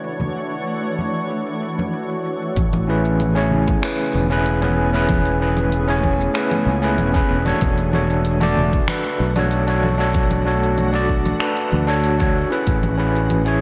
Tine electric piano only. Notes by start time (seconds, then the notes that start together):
Already playing: E3 D4 F#4 A4 B4 C#5
2.87 C#4 E4 G#4 B4
3.35 C#4 E4 G#4 C#5
3.82 C#4 E4 G#4 B4
4.30 C#4 E4 G#4 B4
4.61 C#4 E4 G#4 B4
4.93 C#4 E4 G#4 B4
5.40 C#4 E4 G#4 B4
5.88 C#4 E4 G#4 C#5
6.34 C#4 E4 G#4 B4
6.82 C#4 E4 G#4 B4
7.14 C#4 E4 G#4 B4
7.45 D4 F#4 A4 C#5
7.92 D4 F#4 A4 C#5
8.40 D4 F#4 A4 D5
8.88 D4 F#4 A4 B4
9.36 D4 F#4 A4 C#5
9.67 D4 F#4 A4 C#5
9.98 D4 F#4 A4 C#5
10.45 D4 F#4 A4 C#5
10.93 D4 F#4 A4 D5
11.39 D4 F#4 A4 B4
11.87 D4 F#4 A4 C#5
12.19 D4 F#4 A4 C#5
12.50 C#4 E4 G#4 B4
12.97 C#4 E4 G#4 B4
13.45 C#4 E4 G#4 C#5